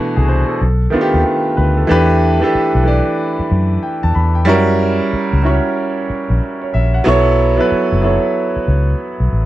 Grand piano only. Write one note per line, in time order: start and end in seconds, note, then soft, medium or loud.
0.00 0.12 B2 loud
0.00 0.13 E3 medium
0.00 0.13 A3 loud
0.00 0.14 D4 loud
0.00 0.14 F#4 loud
0.16 0.27 G#4 medium
0.28 0.47 C5 medium
0.49 0.79 A4 medium
0.90 1.73 D#3 medium
0.90 1.74 A3 medium
0.90 1.74 B3 medium
0.90 1.75 D4 medium
0.94 1.01 F4 medium
1.01 1.23 G4 loud
1.24 1.55 G4 medium
1.57 1.76 B4 medium
1.77 2.07 A4 medium
1.87 2.29 E3 loud
1.87 2.29 A3 loud
1.87 2.30 D4 loud
1.87 2.31 G4 loud
1.91 2.31 B4 loud
2.40 2.78 E3 medium
2.40 2.78 A3 medium
2.40 2.79 D4 medium
2.40 2.79 G4 medium
2.44 2.80 A4 loud
2.83 3.91 E3 medium
2.83 3.92 A3 medium
2.83 3.92 D4 medium
2.83 3.93 G4 medium
2.87 3.93 D5 medium
3.83 4.01 G5 medium
4.03 4.14 A5 medium
4.15 4.34 B5 medium
4.35 4.65 G5 medium
4.45 5.28 G3 loud
4.45 5.28 C#4 loud
4.45 5.29 E4 loud
4.45 5.30 F#4 loud
4.49 5.30 A#4 loud
5.42 5.98 G3 medium
5.42 5.99 C#4 medium
5.42 5.99 E4 medium
5.42 6.00 F#4 medium
5.46 6.00 C#5 medium
6.62 6.72 C#5 medium
6.74 6.92 E5 medium
6.94 7.24 F#5 medium
7.04 7.45 F#3 loud
7.04 7.46 B3 loud
7.04 7.46 E4 loud
7.04 7.47 A4 loud
7.04 7.47 C#5 loud
7.56 7.94 F#3 medium
7.56 7.95 B3 medium
7.56 7.95 E4 medium
7.56 7.96 A4 medium
7.61 7.96 B4 medium
8.01 9.08 F#3 medium
8.01 9.09 B3 medium
8.01 9.09 E4 medium
8.01 9.10 A4 medium
8.05 9.10 C#5 medium